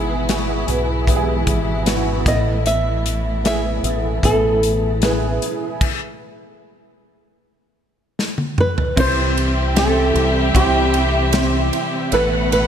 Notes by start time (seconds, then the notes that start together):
Already playing: G#1 G#2 B2 E3 B3 E4 G#4
0.27 B3 E4 F#4, snare, closed hi-hat
0.67 B1 B3 E4 B4, closed hi-hat
1.07 B3 E4 G4, kick, closed hi-hat
1.15 G#4
1.47 G#1, kick, closed hi-hat
1.85 B3 E4 F#4, snare, closed hi-hat
2.25 A1 A2 B3 E4 A4 D#5, kick, snare, closed hi-hat
2.66 E5, closed hi-hat
3.06 closed hi-hat
3.43 B3 E4 G#4 E5, snare, closed hi-hat
3.83 A1 B3 E4 A4, closed hi-hat
4.23 A1 B3 E4 A4, kick, closed hi-hat
4.63 closed hi-hat
5.02 B3 E4 G#4 B4, snare, closed hi-hat
5.42 closed hi-hat
5.81 kick, crash
8.19 snare
8.38 high tom
8.58 B4, mid tom
8.78 floor tom
8.96 C2 C3 E3 G3 C4 E4 G4 C5 E5, kick, crash
9.37 ride
9.74 C4 E4 G4 C5, snare, ride
9.79 A4
10.15 C2, ride
10.53 C2 C4 E4 G4 C5, kick, ride
10.94 ride
11.32 C4 E4 G4 C5, snare, ride
11.73 ride
12.11 A1 A2 B2 A3 B3 E4 A4 B4 F#5, ride
12.52 B4, ride